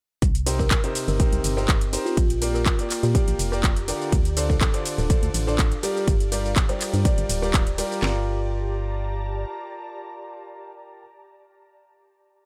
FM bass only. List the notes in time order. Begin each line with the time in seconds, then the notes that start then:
0.22 C2
1.08 G1
1.32 C2
1.44 G1
2.17 A#1
3.03 A#2
3.28 A#1
3.39 F1
4.12 D2
4.98 D1
5.23 D2
5.34 A1
6.08 G1
6.94 G2
7.18 G1
7.29 D1
8.03 G1